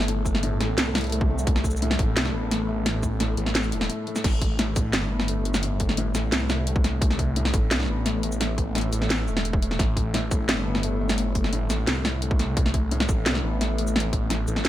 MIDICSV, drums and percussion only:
0, 0, Header, 1, 2, 480
1, 0, Start_track
1, 0, Tempo, 346821
1, 113, Time_signature, 4, 2, 24, 8
1, 20325, End_track
2, 0, Start_track
2, 0, Title_t, "Drums"
2, 114, Note_on_c, 9, 42, 78
2, 252, Note_off_c, 9, 42, 0
2, 353, Note_on_c, 9, 36, 60
2, 356, Note_on_c, 9, 82, 71
2, 479, Note_on_c, 9, 40, 52
2, 491, Note_off_c, 9, 36, 0
2, 494, Note_off_c, 9, 82, 0
2, 595, Note_on_c, 9, 42, 77
2, 618, Note_off_c, 9, 40, 0
2, 733, Note_off_c, 9, 42, 0
2, 838, Note_on_c, 9, 40, 55
2, 838, Note_on_c, 9, 42, 61
2, 976, Note_off_c, 9, 40, 0
2, 976, Note_off_c, 9, 42, 0
2, 1076, Note_on_c, 9, 38, 115
2, 1076, Note_on_c, 9, 42, 79
2, 1214, Note_off_c, 9, 38, 0
2, 1214, Note_off_c, 9, 42, 0
2, 1315, Note_on_c, 9, 40, 83
2, 1315, Note_on_c, 9, 42, 64
2, 1358, Note_off_c, 9, 42, 0
2, 1358, Note_on_c, 9, 42, 48
2, 1396, Note_off_c, 9, 42, 0
2, 1396, Note_on_c, 9, 42, 41
2, 1439, Note_off_c, 9, 42, 0
2, 1439, Note_on_c, 9, 42, 36
2, 1454, Note_off_c, 9, 40, 0
2, 1477, Note_off_c, 9, 42, 0
2, 1477, Note_on_c, 9, 42, 28
2, 1517, Note_off_c, 9, 42, 0
2, 1517, Note_on_c, 9, 42, 23
2, 1555, Note_off_c, 9, 42, 0
2, 1555, Note_on_c, 9, 42, 81
2, 1675, Note_on_c, 9, 36, 108
2, 1693, Note_off_c, 9, 42, 0
2, 1813, Note_off_c, 9, 36, 0
2, 1918, Note_on_c, 9, 82, 71
2, 2034, Note_on_c, 9, 36, 114
2, 2036, Note_on_c, 9, 42, 79
2, 2056, Note_off_c, 9, 82, 0
2, 2156, Note_on_c, 9, 40, 57
2, 2172, Note_off_c, 9, 36, 0
2, 2174, Note_off_c, 9, 42, 0
2, 2273, Note_on_c, 9, 36, 56
2, 2277, Note_on_c, 9, 82, 67
2, 2295, Note_off_c, 9, 40, 0
2, 2358, Note_off_c, 9, 82, 0
2, 2358, Note_on_c, 9, 82, 56
2, 2412, Note_off_c, 9, 36, 0
2, 2441, Note_off_c, 9, 82, 0
2, 2441, Note_on_c, 9, 82, 42
2, 2521, Note_on_c, 9, 42, 78
2, 2579, Note_off_c, 9, 82, 0
2, 2640, Note_on_c, 9, 40, 83
2, 2659, Note_off_c, 9, 42, 0
2, 2754, Note_on_c, 9, 36, 105
2, 2756, Note_on_c, 9, 42, 65
2, 2779, Note_off_c, 9, 40, 0
2, 2893, Note_off_c, 9, 36, 0
2, 2894, Note_off_c, 9, 42, 0
2, 2999, Note_on_c, 9, 38, 117
2, 2999, Note_on_c, 9, 42, 82
2, 3120, Note_on_c, 9, 40, 54
2, 3137, Note_off_c, 9, 38, 0
2, 3137, Note_off_c, 9, 42, 0
2, 3258, Note_off_c, 9, 40, 0
2, 3480, Note_on_c, 9, 40, 57
2, 3480, Note_on_c, 9, 42, 81
2, 3618, Note_off_c, 9, 40, 0
2, 3618, Note_off_c, 9, 42, 0
2, 3957, Note_on_c, 9, 40, 87
2, 3957, Note_on_c, 9, 42, 87
2, 4096, Note_off_c, 9, 40, 0
2, 4096, Note_off_c, 9, 42, 0
2, 4193, Note_on_c, 9, 82, 68
2, 4194, Note_on_c, 9, 36, 61
2, 4332, Note_off_c, 9, 36, 0
2, 4332, Note_off_c, 9, 82, 0
2, 4430, Note_on_c, 9, 40, 57
2, 4430, Note_on_c, 9, 42, 80
2, 4569, Note_off_c, 9, 40, 0
2, 4569, Note_off_c, 9, 42, 0
2, 4669, Note_on_c, 9, 42, 64
2, 4793, Note_on_c, 9, 40, 58
2, 4808, Note_off_c, 9, 42, 0
2, 4913, Note_on_c, 9, 38, 122
2, 4913, Note_on_c, 9, 42, 82
2, 4932, Note_off_c, 9, 40, 0
2, 5034, Note_on_c, 9, 82, 40
2, 5052, Note_off_c, 9, 38, 0
2, 5052, Note_off_c, 9, 42, 0
2, 5151, Note_on_c, 9, 42, 70
2, 5172, Note_off_c, 9, 82, 0
2, 5273, Note_on_c, 9, 40, 85
2, 5290, Note_off_c, 9, 42, 0
2, 5392, Note_on_c, 9, 42, 83
2, 5411, Note_off_c, 9, 40, 0
2, 5530, Note_off_c, 9, 42, 0
2, 5633, Note_on_c, 9, 42, 38
2, 5753, Note_on_c, 9, 40, 54
2, 5753, Note_on_c, 9, 82, 71
2, 5771, Note_off_c, 9, 42, 0
2, 5872, Note_on_c, 9, 36, 120
2, 5873, Note_off_c, 9, 40, 0
2, 5873, Note_on_c, 9, 40, 56
2, 5873, Note_on_c, 9, 42, 89
2, 5873, Note_on_c, 9, 49, 107
2, 5891, Note_off_c, 9, 82, 0
2, 6011, Note_off_c, 9, 36, 0
2, 6011, Note_off_c, 9, 40, 0
2, 6011, Note_off_c, 9, 42, 0
2, 6011, Note_off_c, 9, 49, 0
2, 6111, Note_on_c, 9, 42, 74
2, 6112, Note_on_c, 9, 36, 62
2, 6249, Note_off_c, 9, 42, 0
2, 6250, Note_off_c, 9, 36, 0
2, 6351, Note_on_c, 9, 40, 81
2, 6351, Note_on_c, 9, 42, 86
2, 6490, Note_off_c, 9, 40, 0
2, 6490, Note_off_c, 9, 42, 0
2, 6589, Note_on_c, 9, 42, 69
2, 6589, Note_on_c, 9, 82, 70
2, 6590, Note_on_c, 9, 36, 106
2, 6727, Note_off_c, 9, 42, 0
2, 6727, Note_off_c, 9, 82, 0
2, 6729, Note_off_c, 9, 36, 0
2, 6828, Note_on_c, 9, 38, 121
2, 6828, Note_on_c, 9, 40, 57
2, 6828, Note_on_c, 9, 42, 86
2, 6967, Note_off_c, 9, 38, 0
2, 6967, Note_off_c, 9, 40, 0
2, 6967, Note_off_c, 9, 42, 0
2, 7191, Note_on_c, 9, 40, 58
2, 7309, Note_on_c, 9, 42, 82
2, 7329, Note_off_c, 9, 40, 0
2, 7448, Note_off_c, 9, 42, 0
2, 7548, Note_on_c, 9, 42, 71
2, 7669, Note_on_c, 9, 40, 84
2, 7669, Note_on_c, 9, 82, 64
2, 7686, Note_off_c, 9, 42, 0
2, 7789, Note_on_c, 9, 42, 86
2, 7808, Note_off_c, 9, 40, 0
2, 7808, Note_off_c, 9, 82, 0
2, 7927, Note_off_c, 9, 42, 0
2, 8025, Note_on_c, 9, 42, 72
2, 8029, Note_on_c, 9, 36, 66
2, 8151, Note_on_c, 9, 40, 53
2, 8163, Note_off_c, 9, 42, 0
2, 8167, Note_off_c, 9, 36, 0
2, 8266, Note_on_c, 9, 42, 87
2, 8289, Note_off_c, 9, 40, 0
2, 8405, Note_off_c, 9, 42, 0
2, 8508, Note_on_c, 9, 40, 56
2, 8508, Note_on_c, 9, 42, 69
2, 8508, Note_on_c, 9, 82, 68
2, 8646, Note_off_c, 9, 40, 0
2, 8646, Note_off_c, 9, 42, 0
2, 8646, Note_off_c, 9, 82, 0
2, 8750, Note_on_c, 9, 38, 127
2, 8750, Note_on_c, 9, 42, 87
2, 8888, Note_off_c, 9, 38, 0
2, 8888, Note_off_c, 9, 42, 0
2, 8991, Note_on_c, 9, 40, 82
2, 8991, Note_on_c, 9, 82, 37
2, 9129, Note_off_c, 9, 40, 0
2, 9129, Note_off_c, 9, 82, 0
2, 9230, Note_on_c, 9, 42, 84
2, 9352, Note_on_c, 9, 36, 116
2, 9368, Note_off_c, 9, 42, 0
2, 9471, Note_on_c, 9, 40, 56
2, 9471, Note_on_c, 9, 42, 69
2, 9490, Note_off_c, 9, 36, 0
2, 9609, Note_off_c, 9, 40, 0
2, 9609, Note_off_c, 9, 42, 0
2, 9709, Note_on_c, 9, 36, 127
2, 9713, Note_on_c, 9, 42, 84
2, 9834, Note_on_c, 9, 40, 54
2, 9848, Note_off_c, 9, 36, 0
2, 9851, Note_off_c, 9, 42, 0
2, 9949, Note_on_c, 9, 36, 65
2, 9952, Note_on_c, 9, 42, 70
2, 9972, Note_off_c, 9, 40, 0
2, 10087, Note_off_c, 9, 36, 0
2, 10091, Note_off_c, 9, 42, 0
2, 10189, Note_on_c, 9, 42, 81
2, 10313, Note_on_c, 9, 40, 81
2, 10328, Note_off_c, 9, 42, 0
2, 10430, Note_on_c, 9, 36, 113
2, 10431, Note_on_c, 9, 42, 66
2, 10431, Note_on_c, 9, 82, 67
2, 10452, Note_off_c, 9, 40, 0
2, 10568, Note_off_c, 9, 36, 0
2, 10569, Note_off_c, 9, 42, 0
2, 10569, Note_off_c, 9, 82, 0
2, 10673, Note_on_c, 9, 38, 125
2, 10673, Note_on_c, 9, 42, 84
2, 10794, Note_on_c, 9, 40, 51
2, 10811, Note_off_c, 9, 38, 0
2, 10811, Note_off_c, 9, 42, 0
2, 10832, Note_off_c, 9, 40, 0
2, 10832, Note_on_c, 9, 40, 40
2, 10876, Note_off_c, 9, 40, 0
2, 10876, Note_on_c, 9, 40, 34
2, 11014, Note_off_c, 9, 40, 0
2, 11151, Note_on_c, 9, 40, 52
2, 11151, Note_on_c, 9, 42, 83
2, 11290, Note_off_c, 9, 40, 0
2, 11290, Note_off_c, 9, 42, 0
2, 11393, Note_on_c, 9, 42, 72
2, 11515, Note_on_c, 9, 82, 65
2, 11531, Note_off_c, 9, 42, 0
2, 11635, Note_on_c, 9, 40, 75
2, 11635, Note_on_c, 9, 42, 82
2, 11654, Note_off_c, 9, 82, 0
2, 11773, Note_off_c, 9, 40, 0
2, 11773, Note_off_c, 9, 42, 0
2, 11873, Note_on_c, 9, 36, 62
2, 11875, Note_on_c, 9, 42, 67
2, 12011, Note_off_c, 9, 36, 0
2, 12013, Note_off_c, 9, 42, 0
2, 12113, Note_on_c, 9, 40, 50
2, 12113, Note_on_c, 9, 42, 75
2, 12152, Note_off_c, 9, 42, 0
2, 12152, Note_on_c, 9, 42, 63
2, 12198, Note_off_c, 9, 42, 0
2, 12198, Note_on_c, 9, 42, 52
2, 12251, Note_off_c, 9, 40, 0
2, 12336, Note_off_c, 9, 42, 0
2, 12353, Note_on_c, 9, 42, 65
2, 12353, Note_on_c, 9, 82, 68
2, 12478, Note_on_c, 9, 40, 50
2, 12491, Note_off_c, 9, 42, 0
2, 12491, Note_off_c, 9, 82, 0
2, 12597, Note_on_c, 9, 38, 127
2, 12597, Note_on_c, 9, 42, 79
2, 12617, Note_off_c, 9, 40, 0
2, 12736, Note_off_c, 9, 38, 0
2, 12736, Note_off_c, 9, 42, 0
2, 12840, Note_on_c, 9, 82, 37
2, 12963, Note_on_c, 9, 40, 81
2, 12978, Note_off_c, 9, 82, 0
2, 13080, Note_on_c, 9, 42, 81
2, 13101, Note_off_c, 9, 40, 0
2, 13194, Note_on_c, 9, 36, 117
2, 13218, Note_off_c, 9, 42, 0
2, 13320, Note_on_c, 9, 42, 68
2, 13333, Note_off_c, 9, 36, 0
2, 13439, Note_on_c, 9, 40, 51
2, 13459, Note_off_c, 9, 42, 0
2, 13553, Note_on_c, 9, 36, 121
2, 13558, Note_off_c, 9, 40, 0
2, 13558, Note_on_c, 9, 40, 53
2, 13558, Note_on_c, 9, 42, 76
2, 13691, Note_off_c, 9, 36, 0
2, 13697, Note_off_c, 9, 40, 0
2, 13697, Note_off_c, 9, 42, 0
2, 13793, Note_on_c, 9, 36, 61
2, 13796, Note_on_c, 9, 42, 68
2, 13931, Note_off_c, 9, 36, 0
2, 13934, Note_off_c, 9, 42, 0
2, 14035, Note_on_c, 9, 40, 74
2, 14035, Note_on_c, 9, 42, 78
2, 14174, Note_off_c, 9, 40, 0
2, 14174, Note_off_c, 9, 42, 0
2, 14273, Note_on_c, 9, 36, 105
2, 14275, Note_on_c, 9, 42, 61
2, 14275, Note_on_c, 9, 82, 73
2, 14411, Note_off_c, 9, 36, 0
2, 14414, Note_off_c, 9, 42, 0
2, 14414, Note_off_c, 9, 82, 0
2, 14516, Note_on_c, 9, 38, 122
2, 14516, Note_on_c, 9, 40, 53
2, 14516, Note_on_c, 9, 42, 75
2, 14654, Note_off_c, 9, 38, 0
2, 14654, Note_off_c, 9, 40, 0
2, 14654, Note_off_c, 9, 42, 0
2, 14876, Note_on_c, 9, 40, 52
2, 14991, Note_on_c, 9, 42, 78
2, 15014, Note_off_c, 9, 40, 0
2, 15130, Note_off_c, 9, 42, 0
2, 15354, Note_on_c, 9, 40, 78
2, 15354, Note_on_c, 9, 82, 66
2, 15471, Note_on_c, 9, 42, 77
2, 15492, Note_off_c, 9, 40, 0
2, 15492, Note_off_c, 9, 82, 0
2, 15610, Note_off_c, 9, 42, 0
2, 15710, Note_on_c, 9, 42, 68
2, 15713, Note_on_c, 9, 36, 60
2, 15836, Note_on_c, 9, 40, 51
2, 15849, Note_off_c, 9, 42, 0
2, 15851, Note_off_c, 9, 36, 0
2, 15953, Note_on_c, 9, 42, 77
2, 15975, Note_off_c, 9, 40, 0
2, 16091, Note_off_c, 9, 42, 0
2, 16192, Note_on_c, 9, 40, 54
2, 16192, Note_on_c, 9, 42, 63
2, 16192, Note_on_c, 9, 82, 72
2, 16330, Note_off_c, 9, 40, 0
2, 16330, Note_off_c, 9, 42, 0
2, 16330, Note_off_c, 9, 82, 0
2, 16433, Note_on_c, 9, 38, 119
2, 16433, Note_on_c, 9, 42, 80
2, 16572, Note_off_c, 9, 38, 0
2, 16572, Note_off_c, 9, 42, 0
2, 16675, Note_on_c, 9, 40, 85
2, 16675, Note_on_c, 9, 82, 41
2, 16813, Note_off_c, 9, 40, 0
2, 16813, Note_off_c, 9, 82, 0
2, 16912, Note_on_c, 9, 42, 74
2, 17036, Note_on_c, 9, 36, 109
2, 17051, Note_off_c, 9, 42, 0
2, 17153, Note_on_c, 9, 40, 52
2, 17153, Note_on_c, 9, 42, 65
2, 17174, Note_off_c, 9, 36, 0
2, 17292, Note_off_c, 9, 40, 0
2, 17292, Note_off_c, 9, 42, 0
2, 17394, Note_on_c, 9, 36, 117
2, 17394, Note_on_c, 9, 42, 81
2, 17517, Note_on_c, 9, 40, 54
2, 17532, Note_off_c, 9, 36, 0
2, 17532, Note_off_c, 9, 42, 0
2, 17632, Note_on_c, 9, 42, 67
2, 17634, Note_on_c, 9, 36, 58
2, 17656, Note_off_c, 9, 40, 0
2, 17770, Note_off_c, 9, 42, 0
2, 17772, Note_off_c, 9, 36, 0
2, 17874, Note_on_c, 9, 42, 76
2, 17995, Note_on_c, 9, 40, 84
2, 18012, Note_off_c, 9, 42, 0
2, 18113, Note_on_c, 9, 82, 75
2, 18114, Note_on_c, 9, 36, 102
2, 18133, Note_off_c, 9, 40, 0
2, 18251, Note_off_c, 9, 82, 0
2, 18252, Note_off_c, 9, 36, 0
2, 18353, Note_on_c, 9, 38, 114
2, 18353, Note_on_c, 9, 42, 77
2, 18477, Note_on_c, 9, 40, 55
2, 18491, Note_off_c, 9, 38, 0
2, 18491, Note_off_c, 9, 42, 0
2, 18616, Note_off_c, 9, 40, 0
2, 18836, Note_on_c, 9, 40, 55
2, 18836, Note_on_c, 9, 42, 81
2, 18974, Note_off_c, 9, 40, 0
2, 18974, Note_off_c, 9, 42, 0
2, 19078, Note_on_c, 9, 42, 65
2, 19199, Note_on_c, 9, 82, 71
2, 19216, Note_off_c, 9, 42, 0
2, 19317, Note_on_c, 9, 40, 85
2, 19337, Note_off_c, 9, 82, 0
2, 19378, Note_on_c, 9, 42, 83
2, 19455, Note_off_c, 9, 40, 0
2, 19517, Note_off_c, 9, 42, 0
2, 19553, Note_on_c, 9, 36, 61
2, 19555, Note_on_c, 9, 42, 71
2, 19692, Note_off_c, 9, 36, 0
2, 19694, Note_off_c, 9, 42, 0
2, 19794, Note_on_c, 9, 40, 56
2, 19794, Note_on_c, 9, 42, 81
2, 19933, Note_off_c, 9, 40, 0
2, 19933, Note_off_c, 9, 42, 0
2, 20033, Note_on_c, 9, 82, 72
2, 20155, Note_on_c, 9, 40, 59
2, 20172, Note_off_c, 9, 82, 0
2, 20274, Note_on_c, 9, 38, 120
2, 20274, Note_on_c, 9, 42, 83
2, 20293, Note_off_c, 9, 40, 0
2, 20325, Note_off_c, 9, 38, 0
2, 20325, Note_off_c, 9, 42, 0
2, 20325, End_track
0, 0, End_of_file